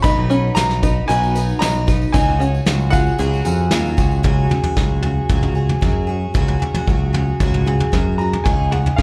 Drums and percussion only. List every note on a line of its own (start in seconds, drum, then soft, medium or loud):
0.04 kick loud
0.04 closed hi-hat medium
0.04 tambourine medium
0.30 closed hi-hat medium
0.30 tambourine soft
0.56 snare loud
0.56 closed hi-hat medium
0.56 tambourine medium
0.70 snare soft
0.83 kick medium
0.83 closed hi-hat medium
0.83 tambourine medium
1.10 closed hi-hat medium
1.10 tambourine soft
1.23 tambourine soft
1.36 closed hi-hat medium
1.36 tambourine medium
1.49 tambourine soft
1.62 snare medium
1.62 closed hi-hat medium
1.62 tambourine medium
1.88 kick medium
1.88 closed hi-hat medium
1.88 tambourine medium
2.02 tambourine soft
2.14 kick loud
2.14 closed hi-hat medium
2.14 tambourine medium
2.29 tambourine soft
2.41 closed hi-hat medium
2.41 tambourine soft
2.55 tambourine soft
2.66 snare medium
2.66 closed hi-hat medium
2.66 tambourine medium
2.80 tambourine soft
2.93 kick medium
2.93 closed hi-hat medium
2.93 tambourine medium
3.07 tambourine soft
3.19 closed hi-hat medium
3.19 tambourine soft
3.33 tambourine soft
3.45 closed hi-hat medium
3.45 tambourine medium
3.71 snare loud
3.71 closed hi-hat medium
3.71 tambourine medium
3.85 tambourine soft
3.98 kick medium
3.98 closed hi-hat medium
3.98 tambourine medium
4.11 tambourine soft
4.24 kick medium
4.24 floor tom medium
4.51 floor tom medium
4.51 mid tom medium
4.63 floor tom medium
4.77 kick medium
4.77 snare medium
5.03 floor tom medium
5.30 kick loud
5.30 floor tom medium
5.43 mid tom medium
5.69 floor tom medium
5.82 kick medium
5.82 floor tom medium
5.82 mid tom medium
6.35 kick loud
6.35 floor tom medium
6.48 floor tom medium
6.62 floor tom medium
6.74 floor tom medium
6.88 kick medium
7.14 floor tom medium
7.40 kick medium
7.40 floor tom medium
7.54 mid tom medium
7.67 mid tom medium
7.80 floor tom medium
7.93 kick medium
7.93 snare medium
7.93 floor tom medium
7.93 mid tom medium
8.33 floor tom medium
8.46 kick medium
8.46 floor tom medium
8.72 floor tom medium
8.86 floor tom medium
8.99 kick medium
8.99 snare medium